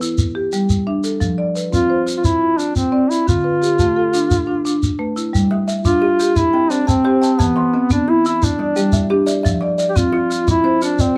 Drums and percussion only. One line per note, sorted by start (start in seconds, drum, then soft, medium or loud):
0.02 shekere medium
0.18 shekere medium
0.52 shekere medium
0.70 shekere medium
1.04 shekere medium
1.21 shekere medium
1.56 shekere medium
1.73 shekere medium
2.08 shekere medium
2.24 shekere medium
2.59 shekere medium
2.76 shekere medium
3.11 shekere medium
3.28 shekere medium
3.63 shekere medium
3.79 shekere medium
4.14 shekere medium
4.31 shekere medium
4.66 shekere medium
4.83 shekere medium
5.17 shekere medium
5.35 shekere medium
5.68 shekere medium
5.85 shekere medium
6.20 shekere medium
6.36 shekere medium
6.71 shekere medium
6.88 shekere medium
7.23 shekere medium
7.40 shekere medium
7.90 shekere medium
8.26 shekere medium
8.43 shekere medium
8.77 shekere medium
8.92 shekere medium
9.27 shekere medium
9.46 shekere medium
9.79 shekere medium
9.96 shekere medium
10.31 shekere medium
10.48 shekere medium
10.82 shekere medium
10.99 shekere medium